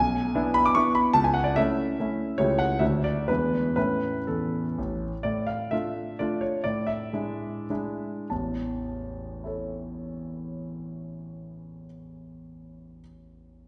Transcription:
0.00 0.34 B1 medium
0.00 0.55 G#5 medium
0.35 0.71 B3 medium
0.35 0.71 D4 medium
0.35 0.71 E4 medium
0.54 0.65 B5 medium
0.66 0.75 D6 medium
0.75 1.11 B3 soft
0.75 1.12 D4 soft
0.75 1.12 E4 medium
0.75 0.95 C#6 medium
0.95 1.15 B5 medium
1.13 1.55 C#2 medium
1.13 1.24 A5 medium
1.24 1.35 G#5 medium
1.34 1.45 F#5 medium
1.44 1.56 D5 medium
1.56 1.96 A3 soft
1.56 1.95 C#4 soft
1.56 1.96 E4 medium
1.56 2.38 E5 medium
2.00 2.35 A3 soft
2.00 2.35 C#4 soft
2.00 2.36 E4 soft
2.38 2.80 C#2 soft
2.38 2.78 A3 soft
2.38 2.78 E4 soft
2.38 2.78 G4 soft
2.38 2.59 C#5 medium
2.59 2.81 F#5 medium
2.79 3.27 D2 medium
2.79 3.25 A3 soft
2.79 3.25 D4 soft
2.79 3.25 F#4 soft
2.79 3.04 E5 medium
3.04 3.28 D5 medium
3.28 3.75 E2 soft
3.28 3.72 G#3 soft
3.28 3.73 D4 soft
3.28 3.73 E4 soft
3.28 3.74 B4 medium
3.76 4.13 A2 soft
3.76 4.18 C#4 soft
3.76 4.18 E4 soft
3.76 4.27 B4 medium
4.27 4.63 E2 soft
4.27 5.02 A4 soft
4.78 5.11 A1 soft
5.23 5.71 A2 soft
5.23 5.47 D5 medium
5.47 5.72 F5 medium
5.71 6.16 A3 soft
5.71 6.16 D4 soft
5.71 6.16 F4 soft
5.71 6.19 E5 medium
6.19 6.60 A3 soft
6.19 6.61 D4 soft
6.19 6.61 F4 soft
6.19 6.42 D5 medium
6.41 6.64 C#5 medium
6.64 7.11 A2 soft
6.64 6.87 D5 medium
6.87 8.30 E5 medium
7.13 7.66 G#3 soft
7.13 7.66 D4 soft
7.13 7.66 E4 soft
7.70 8.27 G#3 soft
7.70 8.27 D4 soft
7.70 8.27 E4 soft
8.30 11.85 A1 soft
8.30 11.85 E2 soft
8.30 11.84 A5 soft
9.44 12.98 E4 soft
9.44 13.00 A4 soft
9.44 13.02 C#5 soft

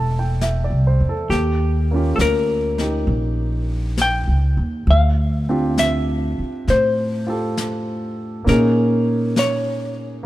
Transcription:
0.00 0.66 E1 medium
0.00 1.27 A3 medium
0.00 1.29 C4 medium
0.00 1.31 E4 soft
0.00 1.32 G4 medium
0.00 0.98 A4 medium
0.00 0.24 A5 soft
0.19 0.50 G5 soft
0.41 0.83 E5 soft
0.41 snare soft
0.41 hi-hat pedal soft
0.64 1.02 D5 soft
0.70 0.98 C2 medium
0.87 1.13 C5 soft
1.00 1.27 E2 medium
1.09 1.39 A4 soft
1.30 2.14 D#2 medium
1.30 2.15 G4 medium
1.30 brush sweep soft
1.30 snare soft
1.91 4.88 A#3 soft
1.91 4.89 C#4 soft
1.91 4.90 F4 soft
1.96 2.79 G4 soft
2.16 3.03 D2 medium
2.16 2.19 A4 medium
2.16 snare soft
2.16 hi-hat pedal soft
2.21 3.66 A#4 medium
2.78 4.88 D#4 soft
2.78 4.89 G4 soft
2.78 snare soft
3.07 4.23 A#1 medium
3.07 brush sweep soft
3.98 snare soft
3.98 hi-hat pedal soft
4.02 4.90 G5 medium
4.27 4.55 C#2 medium
4.57 4.85 D#2 medium
4.87 6.34 D2 medium
4.87 5.53 F5 medium
4.87 brush sweep soft
5.49 8.46 C4 soft
5.49 8.46 D4 soft
5.49 7.25 F4 soft
5.49 7.26 G4 soft
5.49 5.79 E5 medium
5.78 6.71 E5 medium
5.78 snare soft
5.78 hi-hat pedal medium
6.39 muted upright bass stroke soft
6.67 8.43 A2 medium
6.67 8.15 C5 medium
6.67 brush sweep soft
6.67 snare soft
7.27 8.46 F4 soft
7.27 8.46 G4 soft
7.27 8.47 A4 soft
7.57 snare soft
7.57 hi-hat pedal medium
8.44 10.21 A#2 medium
8.44 10.22 A#3 medium
8.44 10.23 C#4 soft
8.44 10.25 D#4 soft
8.44 brush sweep soft
8.44 snare soft
8.49 10.26 G#4 medium
8.49 9.39 A#4 medium
9.36 10.26 C#5 medium
9.36 snare soft
9.36 hi-hat pedal soft

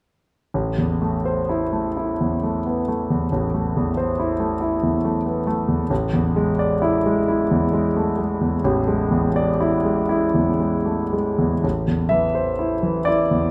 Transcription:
0.54 3.29 A1 soft
0.78 1.16 E2 soft
1.02 1.40 A3 soft
1.25 1.63 C5 soft
1.49 1.87 E4 soft
1.73 2.11 A3 soft
1.97 2.34 E4 soft
2.21 2.58 E2 soft
2.43 2.80 A3 soft
2.66 2.89 B3 soft
2.88 3.24 A3 soft
3.10 3.46 E2 soft
3.32 5.86 A1 soft
3.54 3.89 A3 soft
3.77 4.11 E2 soft
3.97 4.32 C5 soft
4.20 4.54 E4 soft
4.40 4.74 A3 soft
4.61 4.95 E4 soft
4.83 5.17 E2 soft
5.05 5.38 A3 soft
5.26 5.47 B3 soft
5.47 5.82 A3 soft
5.68 5.91 E2 soft
5.90 8.61 A1 medium
6.14 6.50 E2 soft
6.36 6.73 G#3 soft
6.59 6.96 D5 soft
6.82 7.19 E4 medium
7.06 7.42 G#3 soft
7.28 7.65 E4 soft
7.51 7.88 E2 soft
7.73 8.10 G#3 soft
7.97 8.19 A3 soft
8.18 8.55 G#3 soft
8.41 8.78 E2 soft
8.64 11.59 A1 medium
8.88 9.26 G#3 soft
9.11 9.50 E2 soft
9.36 9.75 D5 soft
9.61 10.00 E4 medium
9.85 10.24 G#3 soft
10.09 10.50 E4 soft
10.34 10.76 E2 soft
10.60 11.02 G#3 soft
10.86 11.13 A3 soft
11.13 11.54 G#3 soft
11.38 11.63 E2 soft
11.64 13.51 A1 soft
11.88 12.26 E2 soft
12.09 12.50 E3 soft
12.09 13.06 E5 medium
12.35 12.74 C5 soft
12.59 12.97 E4 soft
12.83 13.21 E3 soft
13.05 13.45 E4 soft
13.05 13.51 D5 medium
13.31 13.51 E2 soft

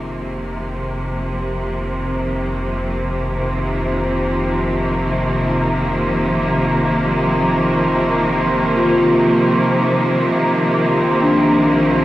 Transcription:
0.00 10.20 F1 medium
0.00 12.05 C3 medium
0.00 12.05 D#3 medium
0.00 12.05 F3 medium
0.00 12.05 A#3 medium
0.00 0.92 D#4 soft
1.39 3.87 G4 soft
8.76 10.69 F4 medium
10.25 12.05 A#1 medium
11.22 12.05 D4 medium

